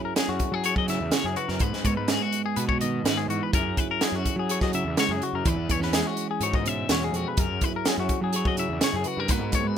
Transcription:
Already playing: clean electric guitar F#3 C#4 E4 G#4
0.05 clean electric guitar A#4
0.15 clean electric guitar C#4 G#4, snare, closed hi-hat
0.29 picked electric bass F#2, clean electric guitar F#4
0.39 kick, closed hi-hat
0.52 picked electric bass F#3, clean electric guitar G#4
0.64 clean electric guitar G#4 C#5, closed hi-hat
0.76 picked electric bass F#3, clean electric guitar D#5, kick
0.87 clean electric guitar C#3 E4 E5, snare, closed hi-hat
1.00 picked electric bass E2
1.11 clean electric guitar G#4 C#5, snare, closed hi-hat
1.24 picked electric bass F#2, clean electric guitar G#4
1.36 clean electric guitar F#4 B4, closed hi-hat
1.48 picked electric bass F#2, clean electric guitar A#4, snare
1.59 picked electric bass G#2, clean electric guitar G#2 B4, kick, closed hi-hat
1.73 picked electric bass G#2, snare
1.84 picked electric bass G#2, clean electric guitar B3 C#5, kick, closed hi-hat
1.97 picked electric bass G#2, clean electric guitar B4
2.08 clean electric guitar G#3 G#4, snare, closed hi-hat
2.22 clean electric guitar F#4
2.32 closed hi-hat
2.46 clean electric guitar G#4
2.56 picked electric bass B2, clean electric guitar F#4 B4, closed hi-hat
2.69 clean electric guitar C#5, kick
2.81 clean electric guitar D#3 B3 D#5, closed hi-hat
3.04 picked electric bass G#2, clean electric guitar D#3 B4, snare, closed hi-hat
3.17 clean electric guitar G#4
3.28 picked electric bass G#2, clean electric guitar E3 F#4, closed hi-hat
3.43 clean electric guitar B4
3.52 picked electric bass F#2, clean electric guitar F#3 C#4 E4 G#4 A#4, kick, closed hi-hat
3.77 clean electric guitar E4 B4, kick, closed hi-hat
3.91 clean electric guitar A#4
4.01 clean electric guitar C#4 G#4, snare, closed hi-hat
4.12 picked electric bass F#2, clean electric guitar F#4
4.25 kick, closed hi-hat
4.36 picked electric bass F#3, clean electric guitar G#4
4.49 clean electric guitar G#4 C#5, closed hi-hat
4.61 picked electric bass F#3, clean electric guitar D#5, kick, snare
4.73 clean electric guitar C#3 E4 E5, closed hi-hat
4.85 picked electric bass E2
4.97 clean electric guitar G#3 C#5, snare, closed hi-hat
5.09 picked electric bass F#2, clean electric guitar G#4
5.21 clean electric guitar F#3 F#4, closed hi-hat
5.33 picked electric bass F#2, clean electric guitar A#4
5.45 picked electric bass E2, clean electric guitar E3 B4, kick, closed hi-hat
5.56 picked electric bass E2
5.69 picked electric bass E2, clean electric guitar B3 C#5, kick, closed hi-hat
5.80 picked electric bass E2, clean electric guitar C#4, snare
5.84 clean electric guitar B4
5.93 clean electric guitar G#3 G#4, snare, closed hi-hat
6.07 clean electric guitar F#4
6.17 closed hi-hat
6.31 clean electric guitar G#4
6.41 picked electric bass G#2, clean electric guitar F#4 C#5, closed hi-hat
6.54 clean electric guitar D#5, kick
6.66 clean electric guitar B2 C#4 E5, closed hi-hat
6.89 picked electric bass E2, clean electric guitar F#4 C#5, snare, closed hi-hat
7.04 clean electric guitar G#4
7.13 picked electric bass F2, clean electric guitar F#4 G#4, closed hi-hat
7.28 clean electric guitar B4
7.37 picked electric bass F#2, clean electric guitar F#3 A#4, kick, closed hi-hat
7.61 clean electric guitar E4 B4, kick, closed hi-hat
7.76 clean electric guitar A#4
7.85 clean electric guitar C#4 G#4, snare, closed hi-hat
7.98 picked electric bass F#2, clean electric guitar F#4
8.09 kick, closed hi-hat
8.22 picked electric bass F#3, clean electric guitar G#4
8.33 clean electric guitar G#4 C#5, closed hi-hat
8.45 picked electric bass F#3, clean electric guitar D#5, kick
8.57 clean electric guitar C#3 E4 E5, closed hi-hat
8.69 picked electric bass E2
8.81 clean electric guitar G#4 C#5, snare, closed hi-hat
8.93 picked electric bass F#2, clean electric guitar G#4
9.04 clean electric guitar F#4 B4, closed hi-hat
9.17 picked electric bass G2, clean electric guitar A#4
9.28 picked electric bass G#2, clean electric guitar G#2 G#3 B3 F#4 B4, kick, closed hi-hat
9.33 clean electric guitar A#4
9.40 picked electric bass G#2
9.52 picked electric bass G#2, clean electric guitar B3 C#5, kick, closed hi-hat
9.64 picked electric bass G#2, clean electric guitar B4

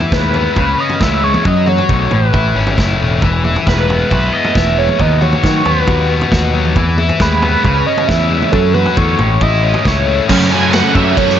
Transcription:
Already playing: overdriven electric guitar E3 E4
0.01 floor tom
0.12 picked electric bass D#2, overdriven electric guitar G#3, analog synth lead B4, kick, snare
0.34 overdriven electric guitar B3, floor tom
0.56 picked electric bass C#2, overdriven electric guitar C#3, analog synth lead B4, kick, floor tom
0.78 overdriven electric guitar C#4, analog synth lead D#5
0.89 floor tom
1.00 picked electric bass C#2, overdriven electric guitar E4, analog synth lead E5, kick, snare, mid tom
1.23 overdriven electric guitar G#3, analog synth lead C#5
1.34 mid tom
1.45 picked electric bass F#2, overdriven electric guitar F#3, analog synth lead D#5, kick, floor tom
1.66 overdriven electric guitar F#4, analog synth lead C#5, mid tom
1.78 floor tom
1.89 picked electric bass B1, overdriven electric guitar A3, kick
2.11 picked electric bass A1, overdriven electric guitar A2, analog synth lead B4, floor tom
2.34 picked electric bass A1, overdriven electric guitar E4, kick, floor tom
2.55 picked electric bass G#1, overdriven electric guitar C#4
2.67 floor tom
2.78 picked electric bass F#1, overdriven electric guitar E4, kick, snare
3.00 picked electric bass E1, overdriven electric guitar A3
3.22 picked electric bass E1, overdriven electric guitar E3, kick, floor tom
3.44 overdriven electric guitar E4, mid tom
3.56 floor tom
3.66 picked electric bass E1, overdriven electric guitar G#3, analog synth lead B4, kick, snare
3.88 overdriven electric guitar B3, floor tom
4.10 picked electric bass B1, overdriven electric guitar E4, analog synth lead B4, kick, floor tom
4.32 overdriven electric guitar B3, analog synth lead D#5
4.44 floor tom
4.55 picked electric bass E1, overdriven electric guitar E4, analog synth lead E5, kick, snare, mid tom
4.78 overdriven electric guitar G#3, analog synth lead C#5
4.89 mid tom
4.99 picked electric bass D#2, overdriven electric guitar D#3, analog synth lead D#5, kick, floor tom
5.21 overdriven electric guitar F#4, analog synth lead C#5, mid tom
5.32 floor tom
5.43 picked electric bass D#3, overdriven electric guitar F#3, kick, snare
5.65 picked electric bass D#2, overdriven electric guitar B3, analog synth lead B4, floor tom
5.87 picked electric bass D#2, overdriven electric guitar F#4, kick, floor tom
6.10 overdriven electric guitar B3
6.21 floor tom
6.32 picked electric bass D#2, overdriven electric guitar F#4, kick, snare, mid tom
6.54 overdriven electric guitar F#3
6.65 mid tom
6.76 picked electric bass E2, overdriven electric guitar E3, kick, floor tom
6.98 overdriven electric guitar E4, mid tom
7.09 floor tom
7.20 picked electric bass D#2, overdriven electric guitar G#3, analog synth lead B4, kick, snare
7.42 overdriven electric guitar B3, analog synth lead B4, floor tom
7.64 picked electric bass C#2, overdriven electric guitar C#3, kick, floor tom
7.86 overdriven electric guitar C#4, analog synth lead D#5
7.98 floor tom
8.07 picked electric bass E2, overdriven electric guitar E4, analog synth lead E5, kick, snare, mid tom
8.30 overdriven electric guitar G#3
8.42 mid tom
8.52 picked electric bass F#2, overdriven electric guitar F#3, analog synth lead A4, kick, floor tom
8.74 overdriven electric guitar F#4, analog synth lead B4, mid tom
8.86 floor tom
8.97 picked electric bass E2, overdriven electric guitar A3, analog synth lead C#5, kick
9.19 picked electric bass A1, overdriven electric guitar A2, floor tom
9.41 picked electric bass A1, overdriven electric guitar E4, analog synth lead D#5, kick, floor tom
9.63 overdriven electric guitar C#4
9.74 floor tom
9.85 picked electric bass C#2, overdriven electric guitar E4, analog synth lead C#5, kick, snare
10.07 overdriven electric guitar A3
10.27 overdriven electric guitar F#2 C#3 F#3 A3 C#4, picked electric bass F#2, tonewheel organ C#5 F#5 A5 E6, kick, crash
10.32 overdriven electric guitar F#4
10.50 overdriven electric guitar F#2 C#3 F#3 A3 C#4, analog synth lead G#5
10.54 overdriven electric guitar F#4
10.72 overdriven electric guitar F#2 C#3 F#3 A3 C#4, analog synth lead F#5, snare, ride bell
10.76 overdriven electric guitar F#4
10.94 overdriven electric guitar F#2 C#3 F#3 A3 C#4, picked electric bass F#2, analog synth lead E5, kick
10.98 overdriven electric guitar F#4
11.15 overdriven electric guitar F#2 C#3 F#3 A3 C#4, picked electric bass F#2, analog synth lead C#5, kick, ride bell
11.20 overdriven electric guitar F#4
11.30 snare

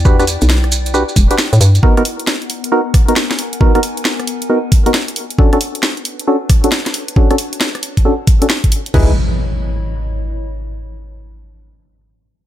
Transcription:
Already playing: fm bass E2, ambient pad E4 D5 G5
0.05 synth stab D4 F#4 G4 B4, kick, maracas
0.19 synth stab D4 F#4 G4 B4, cross-stick, closed hi-hat, maracas
0.27 open hi-hat, maracas
0.41 fm bass B1, closed hi-hat, maracas
0.50 snare, maracas
0.64 cross-stick, closed hi-hat
0.72 open hi-hat, maracas
0.86 closed hi-hat, maracas
0.94 synth stab D4 F#4 G4 B4, maracas
1.09 maracas
1.16 fm bass E1, kick, open hi-hat, maracas
1.31 synth stab D4 F#4 G4 B4, closed hi-hat, maracas
1.38 snare, maracas
1.53 fm bass A2, closed hi-hat, maracas
1.61 fm bass G2, open hi-hat, maracas
1.75 closed hi-hat, maracas
1.83 synth stab B3 D#4 F#4 A#4, ambient pad B3, kick
1.92 ambient pad A#4 F#5
1.97 synth stab B3 D#4 F#4 A#4, cross-stick, closed hi-hat
2.05 open hi-hat
2.20 closed hi-hat
2.27 snare
2.34 ambient pad G#5
2.42 closed hi-hat
2.50 open hi-hat
2.64 closed hi-hat
2.72 synth stab B3 D#4 F#4 A#4
2.94 kick, cross-stick, open hi-hat
3.08 synth stab B3 D#4 F#4 A#4, closed hi-hat
3.16 snare
3.31 snare, closed hi-hat
3.39 open hi-hat
3.53 closed hi-hat
3.61 synth stab B3 D#4 F#4 A#4, kick
3.75 synth stab B3 D#4 F#4 A#4, cross-stick, closed hi-hat
3.83 open hi-hat
3.97 closed hi-hat
4.05 snare
4.20 cross-stick, closed hi-hat
4.27 open hi-hat
4.42 closed hi-hat
4.49 synth stab B3 D#4 F#4 A#4
4.72 kick, open hi-hat
4.86 synth stab B3 D#4 F#4 A#4, closed hi-hat
4.94 snare
5.08 closed hi-hat
5.16 open hi-hat
5.30 closed hi-hat
5.38 synth stab C#4 D4 F#4 A4, ambient pad D4, kick
5.44 ambient pad B4
5.53 synth stab C#4 D4 F#4 A4, ambient pad C#5, cross-stick, closed hi-hat
5.61 open hi-hat
5.75 closed hi-hat
5.83 snare
5.97 closed hi-hat
6.03 ambient pad A5, open hi-hat
6.19 closed hi-hat
6.27 synth stab C#4 D4 F#4 A4
6.50 kick, cross-stick, open hi-hat
6.64 synth stab C#4 D4 F#4 A4, closed hi-hat
6.72 snare
6.86 snare, closed hi-hat
6.94 open hi-hat
7.08 closed hi-hat
7.16 synth stab C#4 D4 F#4 A4, kick
7.31 synth stab C#4 D4 F#4 A4, cross-stick, closed hi-hat
7.38 open hi-hat
7.53 closed hi-hat
7.61 snare
7.75 cross-stick, closed hi-hat
7.83 open hi-hat
7.97 kick, closed hi-hat
8.05 synth stab C#4 D4 F#4 A4
8.27 kick, open hi-hat
8.42 synth stab C#4 D4 F#4 A4, closed hi-hat
8.50 snare
8.64 kick, closed hi-hat
8.72 open hi-hat
8.86 closed hi-hat
8.94 fm bass C#2, synth stab D#4 E4 G#4 B4, ambient pad E4, kick, floor tom, crash, impact
9.03 ambient pad C#5
9.10 ambient pad D#5
9.15 ambient pad B5

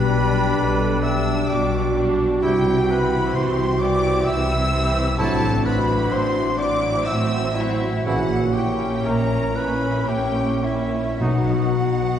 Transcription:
Already playing: double bass section B1, cello section B2, timpani B2, trombone section B2 G3, harp B2 G3 B3, viola section G3 D4, violin section D4 G4 B5, trumpet D4, french horn section G4, clarinet B4, flute B5
0.13 viola section G3 D4, harp D4, violin section D4 G4
0.36 harp G4
0.58 double bass section B1, cello section B2, french horn section A4, harp D5
0.81 harp G4
1.03 viola section G3 D4, violin section D4 G4 E6, french horn section G4, clarinet E5, harp G5, flute E6
1.26 harp D6
1.48 double bass section B1, cello section B2, french horn section F#4, clarinet D5, harp G5, flute D6, violin section D6
1.72 harp D5
1.95 viola section G3 D4, violin section D4 G4, harp G4
2.20 harp D4
2.42 double bass section C2, harp C3, cello section C3, trombone section C3 G3, trumpet E4, clarinet G4, violin section G5, flute G5
2.66 harp G3
2.89 viola section E3 C4, harp C4, violin section E4 G4 B5, clarinet B4, flute B5
3.13 harp G4
3.35 double bass section C2, cello section C3, clarinet C5, harp E5, violin section C6, flute C6
3.58 harp C5
3.80 viola section E3 C4, violin section E4 G4 D6, clarinet D5, harp G5, flute D6
4.02 harp E6
4.25 double bass section C2, cello section C3, clarinet E5, harp G5, flute E6, violin section E6
4.29 french horn section E4
4.48 harp C5
4.72 viola section E3 C4, violin section E4 G4, harp G4
4.95 harp C4
5.18 double bass section A1, harp A2, cello section A2, trombone section C3 F#3, viola section F#3 C4, french horn section D4, violin section E4 F#4 A5, trumpet E4, clarinet A4, flute A5
5.41 harp E3
5.64 viola section F#3 C4, harp C4, violin section E4 F#4 B5, clarinet B4, flute B5
5.87 harp F#4
6.10 double bass section A1, cello section A2, clarinet C5, harp E5, violin section C6, flute C6
6.34 harp C5
6.58 viola section F#3 C4, violin section E4 F#4 D6, clarinet D5, harp F#5, flute D6
6.82 harp E6
7.05 double bass section A1, cello section A2, french horn section C4, clarinet E5, harp F#5, flute E6, violin section E6
7.31 harp C5
7.55 viola section F#3 C4, clarinet E4, violin section E4 F#4 E5, harp F#4, flute E5
7.81 harp C4
8.05 double bass section A#1, cello section A#2, harp A#2, trombone section C#3 E3, french horn section C#4, trumpet E4, clarinet F#4, flute F#5, violin section F#5
8.31 harp A#3
8.54 viola section A#3 C#4, harp C#4, violin section E4 G5, clarinet G4, flute G5
8.81 harp E4
9.05 double bass section A#1, cello section A#2, clarinet A#4, harp E5, flute A#5, violin section A#5
9.31 harp C#5
9.55 viola section A#3 C#4, violin section E4 B5, clarinet B4, harp E5, flute B5
9.81 harp E6
10.08 double bass section A#1, cello section A#2, clarinet G4, harp E5, flute G5, violin section G5
10.36 harp C#5
10.62 viola section A#3 C#4, violin section E4 E5, clarinet E4, harp E4, flute E5
10.92 harp C#4
11.20 double bass section B1, timpani B2, harp B2, trombone section B2 F#3, cello section B2, viola section F#3 B3, violin section D#4 F#4 F#5, trumpet D#4, french horn section D#4, clarinet F#4, flute F#5
11.51 harp F#3
11.79 viola section F#3 B3, harp B3, violin section D#4 F#4
12.10 harp F#4

